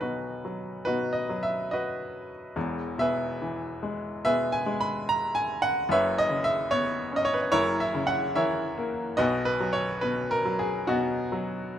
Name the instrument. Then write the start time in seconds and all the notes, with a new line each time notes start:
upright piano
Already playing: B1 F#3 F#4 D#5
0.00 B2 D#4 F#4 B4
0.45 F#3
0.85 B2 D#4 F#4 B4
1.13 D#5
1.29 F#3
1.43 E5
1.71 F#4 B4 D#5
2.56 E1 E2
2.98 B2 G#4 B4 E5
3.42 E3
3.83 G#3
4.25 B2 G#4 B4 E5
4.52 G#5
4.66 G#3
4.81 B5
5.09 A#5
5.35 G#5
5.62 F#5
5.89 F#1 F#2 B4 C#5 E5
6.18 D#5
6.29 C#3
6.44 E5
6.71 B3 C#5
7.12 C#4
7.16 D#5
7.25 C#5
7.34 B4
7.42 C#5
7.52 F#1 F#2 E4 A#4 C#5
7.80 E5
7.94 C#3
8.07 F#5
8.36 E3 A#4 C#5 E5
8.77 A#3
9.17 B1 B2 F#4 B4 D#5
9.45 B4
9.60 F#3
9.73 C#5
10.01 B2 B4
10.31 A#4
10.45 F#3
10.59 G#4
10.87 B2 B3 D#4 F#4
11.32 F#3